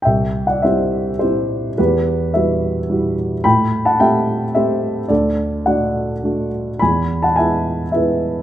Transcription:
\new Staff \with { instrumentName = "Grand piano" } { \time 3/4 \key c \lydian \tempo 4 = 107 << { <e'' g''>8. <d'' fis''>16 <c'' e''>4 <g' c''>4 | <g' b'>4 <b' e''>4. r8 | <g'' b''>8. <fis'' a''>16 <e'' g''>4 <c'' e''>4 | <a' d''>4 <d'' fis''>4. r8 |
<gis'' b''>8. <fis'' a''>16 <e'' gis''>4 <b' e''>4 | } \\ { c,4 <g c' e'>4 <g c' e'>4 | e,4 <g e' fis'>4 <g e' fis'>4 | a,4 <a c' g'>4 <a c' g'>4 | d,4 <a d' fis'>4 <a d' fis'>4 |
e,4 <gis b e'>4 <gis b e'>4 | } >> }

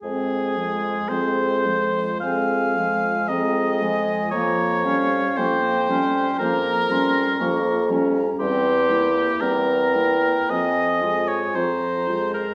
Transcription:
<<
  \new Staff \with { instrumentName = "Flute" } { \time 4/4 \key f \minor \tempo 4 = 58 r2 aes''4 bes''8 aes''8 | bes''8 f''8 g''4 bes''8 c'''8 des'''8 bes''8 | c'''8. r16 bes''8 g''8 aes''4 bes''4 | }
  \new Staff \with { instrumentName = "Oboe" } { \time 4/4 \key f \minor aes'4 c''4 f''4 ees''4 | des''4 c''4 bes'4. r8 | g'4 bes'4 ees''8. des''16 c''8. bes'16 | }
  \new Staff \with { instrumentName = "Clarinet" } { \time 4/4 \key f \minor c'8 aes8 c'8 aes8 c'8 aes8 c'8 aes8 | bes8 des'8 bes8 des'8 bes8 des'8 bes8 des'8 | c'8 e'8 c'8 e'8 c'8 f'8 c'8 f'8 | }
  \new Staff \with { instrumentName = "French horn" } { \clef bass \time 4/4 \key f \minor aes8 f8 aes8 f8 aes8 f8 aes8 f8 | f8 g8 f8 g8 f8 g8 f8 g8 | g8 bes8 g8 bes8 f8 aes8 f8 aes8 | }
  \new Staff \with { instrumentName = "Bassoon" } { \clef bass \time 4/4 \key f \minor f,4 f,4 f,4 f,4 | f,4 f,4 f,4 f,4 | e,4 e,4 f,4 f,4 | }
>>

